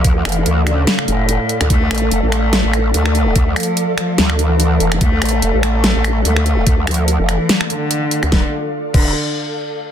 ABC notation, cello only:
X:1
M:4/4
L:1/8
Q:"Swing 16ths" 1/4=145
K:Dm
V:1 name="Cello" clef=bass
F, E,2 ^C,2 A,,3 | A,3 A,3 A,2- | A, F,2 F,2 E,3 | A,3 A,3 A,2- |
A, F,2 E,2 D,3 | D, z2 D, z4 |]